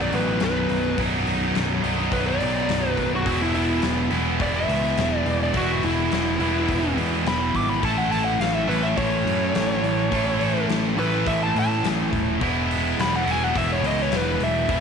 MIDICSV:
0, 0, Header, 1, 5, 480
1, 0, Start_track
1, 0, Tempo, 571429
1, 824, Time_signature, 4, 2, 24, 8
1, 12434, End_track
2, 0, Start_track
2, 0, Title_t, "Lead electric guitar"
2, 0, Program_c, 0, 29
2, 13, Note_on_c, 0, 74, 69
2, 116, Note_off_c, 0, 74, 0
2, 129, Note_on_c, 0, 71, 90
2, 350, Note_off_c, 0, 71, 0
2, 370, Note_on_c, 0, 71, 92
2, 823, Note_off_c, 0, 71, 0
2, 1791, Note_on_c, 0, 71, 104
2, 1903, Note_off_c, 0, 71, 0
2, 1906, Note_on_c, 0, 74, 88
2, 2452, Note_off_c, 0, 74, 0
2, 2452, Note_on_c, 0, 71, 88
2, 2602, Note_off_c, 0, 71, 0
2, 2650, Note_on_c, 0, 66, 84
2, 2869, Note_off_c, 0, 66, 0
2, 2873, Note_on_c, 0, 64, 77
2, 2976, Note_off_c, 0, 64, 0
2, 2987, Note_on_c, 0, 64, 93
2, 3217, Note_off_c, 0, 64, 0
2, 3708, Note_on_c, 0, 74, 113
2, 3821, Note_off_c, 0, 74, 0
2, 3830, Note_on_c, 0, 76, 96
2, 4342, Note_off_c, 0, 76, 0
2, 4342, Note_on_c, 0, 74, 96
2, 4523, Note_off_c, 0, 74, 0
2, 4565, Note_on_c, 0, 74, 84
2, 4669, Note_off_c, 0, 74, 0
2, 4680, Note_on_c, 0, 66, 99
2, 4903, Note_off_c, 0, 66, 0
2, 4915, Note_on_c, 0, 64, 99
2, 5838, Note_off_c, 0, 64, 0
2, 6114, Note_on_c, 0, 83, 101
2, 6340, Note_off_c, 0, 83, 0
2, 6355, Note_on_c, 0, 86, 91
2, 6462, Note_off_c, 0, 86, 0
2, 6462, Note_on_c, 0, 83, 82
2, 6577, Note_off_c, 0, 83, 0
2, 6591, Note_on_c, 0, 81, 85
2, 6701, Note_off_c, 0, 81, 0
2, 6701, Note_on_c, 0, 78, 85
2, 6816, Note_off_c, 0, 78, 0
2, 6820, Note_on_c, 0, 81, 82
2, 6925, Note_off_c, 0, 81, 0
2, 6928, Note_on_c, 0, 78, 87
2, 7050, Note_off_c, 0, 78, 0
2, 7055, Note_on_c, 0, 77, 86
2, 7180, Note_off_c, 0, 77, 0
2, 7180, Note_on_c, 0, 76, 90
2, 7296, Note_off_c, 0, 76, 0
2, 7298, Note_on_c, 0, 71, 80
2, 7415, Note_off_c, 0, 71, 0
2, 7420, Note_on_c, 0, 76, 72
2, 7536, Note_off_c, 0, 76, 0
2, 7546, Note_on_c, 0, 73, 108
2, 8949, Note_off_c, 0, 73, 0
2, 9234, Note_on_c, 0, 71, 95
2, 9460, Note_off_c, 0, 71, 0
2, 9470, Note_on_c, 0, 76, 96
2, 9581, Note_off_c, 0, 76, 0
2, 9602, Note_on_c, 0, 81, 85
2, 9708, Note_off_c, 0, 81, 0
2, 9736, Note_on_c, 0, 81, 101
2, 9951, Note_off_c, 0, 81, 0
2, 10927, Note_on_c, 0, 83, 100
2, 11031, Note_off_c, 0, 83, 0
2, 11052, Note_on_c, 0, 78, 91
2, 11180, Note_off_c, 0, 78, 0
2, 11180, Note_on_c, 0, 80, 76
2, 11287, Note_off_c, 0, 80, 0
2, 11287, Note_on_c, 0, 78, 80
2, 11404, Note_off_c, 0, 78, 0
2, 11404, Note_on_c, 0, 76, 99
2, 11510, Note_off_c, 0, 76, 0
2, 11531, Note_on_c, 0, 73, 77
2, 11633, Note_off_c, 0, 73, 0
2, 11649, Note_on_c, 0, 75, 105
2, 11778, Note_off_c, 0, 75, 0
2, 11778, Note_on_c, 0, 73, 83
2, 11877, Note_off_c, 0, 73, 0
2, 11901, Note_on_c, 0, 71, 93
2, 12115, Note_off_c, 0, 71, 0
2, 12125, Note_on_c, 0, 76, 91
2, 12434, Note_off_c, 0, 76, 0
2, 12434, End_track
3, 0, Start_track
3, 0, Title_t, "Overdriven electric guitar"
3, 0, Program_c, 1, 29
3, 0, Note_on_c, 1, 35, 59
3, 0, Note_on_c, 1, 42, 72
3, 0, Note_on_c, 1, 47, 75
3, 0, Note_on_c, 1, 54, 74
3, 0, Note_on_c, 1, 63, 76
3, 807, Note_off_c, 1, 35, 0
3, 808, Note_off_c, 1, 63, 0
3, 811, Note_off_c, 1, 42, 0
3, 814, Note_off_c, 1, 54, 0
3, 817, Note_on_c, 1, 35, 80
3, 818, Note_off_c, 1, 47, 0
3, 821, Note_on_c, 1, 42, 88
3, 831, Note_on_c, 1, 47, 78
3, 836, Note_on_c, 1, 54, 95
3, 842, Note_on_c, 1, 63, 89
3, 1525, Note_off_c, 1, 63, 0
3, 1526, Note_off_c, 1, 35, 0
3, 1527, Note_off_c, 1, 42, 0
3, 1532, Note_off_c, 1, 47, 0
3, 1533, Note_off_c, 1, 54, 0
3, 1536, Note_on_c, 1, 63, 83
3, 1543, Note_on_c, 1, 54, 81
3, 1549, Note_on_c, 1, 47, 74
3, 1552, Note_on_c, 1, 42, 68
3, 1561, Note_on_c, 1, 35, 71
3, 2724, Note_off_c, 1, 63, 0
3, 2727, Note_off_c, 1, 54, 0
3, 2730, Note_off_c, 1, 35, 0
3, 2730, Note_off_c, 1, 47, 0
3, 2732, Note_off_c, 1, 42, 0
3, 2734, Note_on_c, 1, 40, 90
3, 2743, Note_on_c, 1, 47, 93
3, 2747, Note_on_c, 1, 52, 77
3, 2749, Note_on_c, 1, 56, 86
3, 2756, Note_on_c, 1, 59, 97
3, 2761, Note_on_c, 1, 64, 86
3, 3444, Note_off_c, 1, 64, 0
3, 3447, Note_off_c, 1, 47, 0
3, 3447, Note_on_c, 1, 64, 92
3, 3451, Note_off_c, 1, 59, 0
3, 3454, Note_on_c, 1, 59, 72
3, 3455, Note_off_c, 1, 56, 0
3, 3459, Note_on_c, 1, 56, 88
3, 3462, Note_off_c, 1, 52, 0
3, 3466, Note_on_c, 1, 52, 70
3, 3469, Note_on_c, 1, 47, 68
3, 3471, Note_off_c, 1, 40, 0
3, 3475, Note_on_c, 1, 40, 58
3, 4631, Note_off_c, 1, 40, 0
3, 4640, Note_off_c, 1, 47, 0
3, 4641, Note_on_c, 1, 40, 75
3, 4642, Note_off_c, 1, 59, 0
3, 4644, Note_off_c, 1, 56, 0
3, 4650, Note_on_c, 1, 47, 86
3, 4652, Note_off_c, 1, 52, 0
3, 4656, Note_on_c, 1, 52, 93
3, 4660, Note_on_c, 1, 56, 86
3, 4668, Note_off_c, 1, 64, 0
3, 4668, Note_on_c, 1, 59, 87
3, 4672, Note_on_c, 1, 64, 95
3, 5356, Note_off_c, 1, 40, 0
3, 5360, Note_off_c, 1, 47, 0
3, 5364, Note_off_c, 1, 59, 0
3, 5365, Note_off_c, 1, 56, 0
3, 5365, Note_off_c, 1, 64, 0
3, 5368, Note_on_c, 1, 64, 71
3, 5374, Note_on_c, 1, 59, 71
3, 5378, Note_on_c, 1, 56, 75
3, 5383, Note_off_c, 1, 52, 0
3, 5386, Note_on_c, 1, 52, 70
3, 5392, Note_on_c, 1, 47, 72
3, 5394, Note_on_c, 1, 40, 61
3, 6560, Note_off_c, 1, 40, 0
3, 6562, Note_off_c, 1, 59, 0
3, 6563, Note_on_c, 1, 45, 85
3, 6564, Note_off_c, 1, 56, 0
3, 6566, Note_off_c, 1, 47, 0
3, 6569, Note_off_c, 1, 52, 0
3, 6569, Note_on_c, 1, 52, 89
3, 6574, Note_on_c, 1, 57, 89
3, 6581, Note_on_c, 1, 61, 72
3, 6584, Note_off_c, 1, 64, 0
3, 6584, Note_on_c, 1, 64, 93
3, 6590, Note_on_c, 1, 69, 95
3, 7280, Note_off_c, 1, 69, 0
3, 7283, Note_on_c, 1, 69, 80
3, 7291, Note_off_c, 1, 64, 0
3, 7294, Note_off_c, 1, 61, 0
3, 7294, Note_on_c, 1, 64, 72
3, 7297, Note_on_c, 1, 61, 87
3, 7298, Note_off_c, 1, 57, 0
3, 7301, Note_on_c, 1, 57, 80
3, 7303, Note_off_c, 1, 52, 0
3, 7306, Note_on_c, 1, 52, 72
3, 7309, Note_off_c, 1, 45, 0
3, 7313, Note_on_c, 1, 45, 74
3, 8477, Note_off_c, 1, 69, 0
3, 8481, Note_off_c, 1, 45, 0
3, 8484, Note_off_c, 1, 61, 0
3, 8486, Note_off_c, 1, 57, 0
3, 8489, Note_off_c, 1, 52, 0
3, 8491, Note_on_c, 1, 45, 90
3, 8493, Note_on_c, 1, 52, 76
3, 8498, Note_on_c, 1, 57, 87
3, 8505, Note_on_c, 1, 61, 87
3, 8507, Note_off_c, 1, 64, 0
3, 8510, Note_on_c, 1, 64, 92
3, 8516, Note_on_c, 1, 69, 90
3, 9201, Note_off_c, 1, 45, 0
3, 9205, Note_off_c, 1, 57, 0
3, 9208, Note_off_c, 1, 61, 0
3, 9210, Note_off_c, 1, 69, 0
3, 9220, Note_on_c, 1, 69, 72
3, 9224, Note_off_c, 1, 64, 0
3, 9228, Note_on_c, 1, 64, 75
3, 9232, Note_on_c, 1, 61, 77
3, 9235, Note_off_c, 1, 52, 0
3, 9238, Note_on_c, 1, 52, 70
3, 9239, Note_on_c, 1, 57, 78
3, 9243, Note_on_c, 1, 45, 72
3, 10406, Note_off_c, 1, 69, 0
3, 10412, Note_off_c, 1, 61, 0
3, 10415, Note_off_c, 1, 57, 0
3, 10416, Note_off_c, 1, 45, 0
3, 10420, Note_on_c, 1, 40, 74
3, 10422, Note_off_c, 1, 52, 0
3, 10426, Note_on_c, 1, 47, 93
3, 10431, Note_on_c, 1, 52, 97
3, 10432, Note_on_c, 1, 56, 89
3, 10435, Note_off_c, 1, 64, 0
3, 10439, Note_on_c, 1, 59, 89
3, 10443, Note_on_c, 1, 64, 108
3, 11129, Note_off_c, 1, 47, 0
3, 11133, Note_off_c, 1, 64, 0
3, 11136, Note_on_c, 1, 64, 78
3, 11138, Note_off_c, 1, 59, 0
3, 11141, Note_on_c, 1, 59, 77
3, 11146, Note_off_c, 1, 56, 0
3, 11148, Note_off_c, 1, 52, 0
3, 11149, Note_on_c, 1, 56, 69
3, 11151, Note_on_c, 1, 52, 74
3, 11156, Note_on_c, 1, 47, 79
3, 11157, Note_off_c, 1, 40, 0
3, 11160, Note_on_c, 1, 40, 69
3, 12321, Note_off_c, 1, 40, 0
3, 12326, Note_off_c, 1, 64, 0
3, 12331, Note_on_c, 1, 40, 83
3, 12332, Note_off_c, 1, 47, 0
3, 12332, Note_off_c, 1, 56, 0
3, 12333, Note_off_c, 1, 52, 0
3, 12342, Note_on_c, 1, 47, 84
3, 12343, Note_on_c, 1, 52, 96
3, 12351, Note_on_c, 1, 56, 97
3, 12353, Note_off_c, 1, 59, 0
3, 12356, Note_on_c, 1, 59, 77
3, 12356, Note_on_c, 1, 64, 89
3, 12434, Note_off_c, 1, 40, 0
3, 12434, Note_off_c, 1, 47, 0
3, 12434, Note_off_c, 1, 52, 0
3, 12434, Note_off_c, 1, 56, 0
3, 12434, Note_off_c, 1, 59, 0
3, 12434, Note_off_c, 1, 64, 0
3, 12434, End_track
4, 0, Start_track
4, 0, Title_t, "Picked electric bass"
4, 0, Program_c, 2, 34
4, 103, Note_on_c, 2, 33, 80
4, 321, Note_off_c, 2, 33, 0
4, 340, Note_on_c, 2, 23, 91
4, 559, Note_off_c, 2, 23, 0
4, 578, Note_on_c, 2, 23, 75
4, 798, Note_off_c, 2, 23, 0
4, 824, Note_on_c, 2, 23, 78
4, 1041, Note_off_c, 2, 23, 0
4, 1055, Note_on_c, 2, 23, 85
4, 1276, Note_off_c, 2, 23, 0
4, 1294, Note_on_c, 2, 23, 88
4, 1515, Note_off_c, 2, 23, 0
4, 1534, Note_on_c, 2, 23, 93
4, 1755, Note_off_c, 2, 23, 0
4, 1777, Note_on_c, 2, 23, 84
4, 1997, Note_off_c, 2, 23, 0
4, 2024, Note_on_c, 2, 35, 78
4, 2240, Note_off_c, 2, 35, 0
4, 2259, Note_on_c, 2, 23, 86
4, 2477, Note_off_c, 2, 23, 0
4, 2499, Note_on_c, 2, 23, 75
4, 2717, Note_off_c, 2, 23, 0
4, 2732, Note_on_c, 2, 28, 92
4, 3183, Note_off_c, 2, 28, 0
4, 3220, Note_on_c, 2, 28, 80
4, 3437, Note_off_c, 2, 28, 0
4, 3453, Note_on_c, 2, 28, 91
4, 3673, Note_off_c, 2, 28, 0
4, 3694, Note_on_c, 2, 28, 92
4, 3914, Note_off_c, 2, 28, 0
4, 3934, Note_on_c, 2, 37, 79
4, 4154, Note_off_c, 2, 37, 0
4, 4179, Note_on_c, 2, 28, 97
4, 4397, Note_off_c, 2, 28, 0
4, 4412, Note_on_c, 2, 28, 81
4, 4633, Note_off_c, 2, 28, 0
4, 4649, Note_on_c, 2, 28, 83
4, 4871, Note_off_c, 2, 28, 0
4, 4893, Note_on_c, 2, 28, 89
4, 5113, Note_off_c, 2, 28, 0
4, 5135, Note_on_c, 2, 28, 81
4, 5354, Note_off_c, 2, 28, 0
4, 5372, Note_on_c, 2, 28, 91
4, 5592, Note_off_c, 2, 28, 0
4, 5615, Note_on_c, 2, 28, 85
4, 5834, Note_off_c, 2, 28, 0
4, 5849, Note_on_c, 2, 40, 82
4, 6070, Note_off_c, 2, 40, 0
4, 6087, Note_on_c, 2, 28, 88
4, 6309, Note_off_c, 2, 28, 0
4, 6333, Note_on_c, 2, 32, 80
4, 6553, Note_off_c, 2, 32, 0
4, 6576, Note_on_c, 2, 33, 84
4, 7024, Note_off_c, 2, 33, 0
4, 7045, Note_on_c, 2, 33, 77
4, 7268, Note_off_c, 2, 33, 0
4, 7292, Note_on_c, 2, 33, 100
4, 7512, Note_off_c, 2, 33, 0
4, 7536, Note_on_c, 2, 33, 77
4, 7754, Note_off_c, 2, 33, 0
4, 7771, Note_on_c, 2, 42, 89
4, 7991, Note_off_c, 2, 42, 0
4, 8014, Note_on_c, 2, 33, 92
4, 8233, Note_off_c, 2, 33, 0
4, 8252, Note_on_c, 2, 33, 84
4, 8472, Note_off_c, 2, 33, 0
4, 8497, Note_on_c, 2, 33, 95
4, 8715, Note_off_c, 2, 33, 0
4, 8732, Note_on_c, 2, 33, 85
4, 8952, Note_off_c, 2, 33, 0
4, 8966, Note_on_c, 2, 33, 83
4, 9189, Note_off_c, 2, 33, 0
4, 9204, Note_on_c, 2, 33, 95
4, 9428, Note_off_c, 2, 33, 0
4, 9464, Note_on_c, 2, 33, 85
4, 9679, Note_off_c, 2, 33, 0
4, 9702, Note_on_c, 2, 45, 85
4, 9918, Note_off_c, 2, 45, 0
4, 9944, Note_on_c, 2, 33, 90
4, 10159, Note_off_c, 2, 33, 0
4, 10186, Note_on_c, 2, 27, 84
4, 10401, Note_off_c, 2, 27, 0
4, 10420, Note_on_c, 2, 28, 89
4, 10867, Note_off_c, 2, 28, 0
4, 10901, Note_on_c, 2, 28, 78
4, 11118, Note_off_c, 2, 28, 0
4, 11139, Note_on_c, 2, 28, 104
4, 11357, Note_off_c, 2, 28, 0
4, 11382, Note_on_c, 2, 28, 82
4, 11599, Note_off_c, 2, 28, 0
4, 11613, Note_on_c, 2, 37, 80
4, 11834, Note_off_c, 2, 37, 0
4, 11858, Note_on_c, 2, 28, 96
4, 12077, Note_off_c, 2, 28, 0
4, 12093, Note_on_c, 2, 28, 78
4, 12314, Note_off_c, 2, 28, 0
4, 12337, Note_on_c, 2, 28, 93
4, 12434, Note_off_c, 2, 28, 0
4, 12434, End_track
5, 0, Start_track
5, 0, Title_t, "Drums"
5, 106, Note_on_c, 9, 46, 48
5, 190, Note_off_c, 9, 46, 0
5, 338, Note_on_c, 9, 46, 64
5, 346, Note_on_c, 9, 38, 103
5, 422, Note_off_c, 9, 46, 0
5, 430, Note_off_c, 9, 38, 0
5, 581, Note_on_c, 9, 46, 45
5, 665, Note_off_c, 9, 46, 0
5, 823, Note_on_c, 9, 36, 105
5, 824, Note_on_c, 9, 46, 65
5, 907, Note_off_c, 9, 36, 0
5, 908, Note_off_c, 9, 46, 0
5, 1065, Note_on_c, 9, 46, 46
5, 1149, Note_off_c, 9, 46, 0
5, 1305, Note_on_c, 9, 46, 65
5, 1313, Note_on_c, 9, 38, 95
5, 1389, Note_off_c, 9, 46, 0
5, 1397, Note_off_c, 9, 38, 0
5, 1543, Note_on_c, 9, 46, 51
5, 1627, Note_off_c, 9, 46, 0
5, 1780, Note_on_c, 9, 36, 99
5, 1782, Note_on_c, 9, 46, 65
5, 1864, Note_off_c, 9, 36, 0
5, 1866, Note_off_c, 9, 46, 0
5, 2019, Note_on_c, 9, 46, 50
5, 2103, Note_off_c, 9, 46, 0
5, 2260, Note_on_c, 9, 46, 73
5, 2268, Note_on_c, 9, 38, 91
5, 2344, Note_off_c, 9, 46, 0
5, 2352, Note_off_c, 9, 38, 0
5, 2498, Note_on_c, 9, 36, 68
5, 2499, Note_on_c, 9, 46, 46
5, 2582, Note_off_c, 9, 36, 0
5, 2583, Note_off_c, 9, 46, 0
5, 2737, Note_on_c, 9, 36, 103
5, 2738, Note_on_c, 9, 46, 79
5, 2821, Note_off_c, 9, 36, 0
5, 2822, Note_off_c, 9, 46, 0
5, 2977, Note_on_c, 9, 46, 45
5, 3061, Note_off_c, 9, 46, 0
5, 3209, Note_on_c, 9, 46, 67
5, 3218, Note_on_c, 9, 38, 97
5, 3293, Note_off_c, 9, 46, 0
5, 3302, Note_off_c, 9, 38, 0
5, 3450, Note_on_c, 9, 46, 51
5, 3534, Note_off_c, 9, 46, 0
5, 3695, Note_on_c, 9, 46, 73
5, 3696, Note_on_c, 9, 36, 108
5, 3779, Note_off_c, 9, 46, 0
5, 3780, Note_off_c, 9, 36, 0
5, 3944, Note_on_c, 9, 46, 55
5, 4028, Note_off_c, 9, 46, 0
5, 4180, Note_on_c, 9, 46, 65
5, 4188, Note_on_c, 9, 38, 100
5, 4264, Note_off_c, 9, 46, 0
5, 4272, Note_off_c, 9, 38, 0
5, 4420, Note_on_c, 9, 46, 50
5, 4504, Note_off_c, 9, 46, 0
5, 4652, Note_on_c, 9, 46, 69
5, 4655, Note_on_c, 9, 36, 97
5, 4736, Note_off_c, 9, 46, 0
5, 4739, Note_off_c, 9, 36, 0
5, 4898, Note_on_c, 9, 46, 43
5, 4982, Note_off_c, 9, 46, 0
5, 5139, Note_on_c, 9, 46, 63
5, 5148, Note_on_c, 9, 38, 90
5, 5223, Note_off_c, 9, 46, 0
5, 5232, Note_off_c, 9, 38, 0
5, 5376, Note_on_c, 9, 46, 51
5, 5460, Note_off_c, 9, 46, 0
5, 5617, Note_on_c, 9, 36, 92
5, 5618, Note_on_c, 9, 46, 72
5, 5701, Note_off_c, 9, 36, 0
5, 5702, Note_off_c, 9, 46, 0
5, 5861, Note_on_c, 9, 46, 48
5, 5945, Note_off_c, 9, 46, 0
5, 6103, Note_on_c, 9, 46, 73
5, 6111, Note_on_c, 9, 38, 112
5, 6187, Note_off_c, 9, 46, 0
5, 6195, Note_off_c, 9, 38, 0
5, 6339, Note_on_c, 9, 36, 69
5, 6343, Note_on_c, 9, 46, 53
5, 6423, Note_off_c, 9, 36, 0
5, 6427, Note_off_c, 9, 46, 0
5, 6579, Note_on_c, 9, 36, 98
5, 6580, Note_on_c, 9, 46, 72
5, 6663, Note_off_c, 9, 36, 0
5, 6664, Note_off_c, 9, 46, 0
5, 6823, Note_on_c, 9, 46, 49
5, 6907, Note_off_c, 9, 46, 0
5, 7065, Note_on_c, 9, 46, 69
5, 7074, Note_on_c, 9, 38, 85
5, 7149, Note_off_c, 9, 46, 0
5, 7158, Note_off_c, 9, 38, 0
5, 7315, Note_on_c, 9, 46, 50
5, 7399, Note_off_c, 9, 46, 0
5, 7540, Note_on_c, 9, 36, 108
5, 7547, Note_on_c, 9, 46, 71
5, 7624, Note_off_c, 9, 36, 0
5, 7631, Note_off_c, 9, 46, 0
5, 7790, Note_on_c, 9, 46, 49
5, 7874, Note_off_c, 9, 46, 0
5, 8022, Note_on_c, 9, 46, 69
5, 8031, Note_on_c, 9, 38, 101
5, 8106, Note_off_c, 9, 46, 0
5, 8115, Note_off_c, 9, 38, 0
5, 8266, Note_on_c, 9, 46, 48
5, 8350, Note_off_c, 9, 46, 0
5, 8501, Note_on_c, 9, 36, 100
5, 8506, Note_on_c, 9, 46, 63
5, 8585, Note_off_c, 9, 36, 0
5, 8590, Note_off_c, 9, 46, 0
5, 8744, Note_on_c, 9, 46, 44
5, 8828, Note_off_c, 9, 46, 0
5, 8983, Note_on_c, 9, 46, 57
5, 8992, Note_on_c, 9, 38, 104
5, 9067, Note_off_c, 9, 46, 0
5, 9076, Note_off_c, 9, 38, 0
5, 9227, Note_on_c, 9, 46, 46
5, 9311, Note_off_c, 9, 46, 0
5, 9463, Note_on_c, 9, 36, 104
5, 9468, Note_on_c, 9, 46, 68
5, 9547, Note_off_c, 9, 36, 0
5, 9552, Note_off_c, 9, 46, 0
5, 9712, Note_on_c, 9, 46, 52
5, 9796, Note_off_c, 9, 46, 0
5, 9949, Note_on_c, 9, 46, 68
5, 9958, Note_on_c, 9, 38, 114
5, 10033, Note_off_c, 9, 46, 0
5, 10042, Note_off_c, 9, 38, 0
5, 10188, Note_on_c, 9, 36, 71
5, 10192, Note_on_c, 9, 46, 47
5, 10272, Note_off_c, 9, 36, 0
5, 10276, Note_off_c, 9, 46, 0
5, 10427, Note_on_c, 9, 36, 107
5, 10432, Note_on_c, 9, 46, 70
5, 10511, Note_off_c, 9, 36, 0
5, 10516, Note_off_c, 9, 46, 0
5, 10677, Note_on_c, 9, 46, 53
5, 10761, Note_off_c, 9, 46, 0
5, 10916, Note_on_c, 9, 46, 70
5, 10925, Note_on_c, 9, 38, 94
5, 11000, Note_off_c, 9, 46, 0
5, 11009, Note_off_c, 9, 38, 0
5, 11151, Note_on_c, 9, 46, 49
5, 11235, Note_off_c, 9, 46, 0
5, 11387, Note_on_c, 9, 36, 110
5, 11390, Note_on_c, 9, 46, 75
5, 11471, Note_off_c, 9, 36, 0
5, 11474, Note_off_c, 9, 46, 0
5, 11629, Note_on_c, 9, 46, 59
5, 11713, Note_off_c, 9, 46, 0
5, 11860, Note_on_c, 9, 46, 71
5, 11869, Note_on_c, 9, 38, 111
5, 11944, Note_off_c, 9, 46, 0
5, 11953, Note_off_c, 9, 38, 0
5, 12099, Note_on_c, 9, 46, 53
5, 12183, Note_off_c, 9, 46, 0
5, 12340, Note_on_c, 9, 36, 110
5, 12343, Note_on_c, 9, 46, 67
5, 12424, Note_off_c, 9, 36, 0
5, 12427, Note_off_c, 9, 46, 0
5, 12434, End_track
0, 0, End_of_file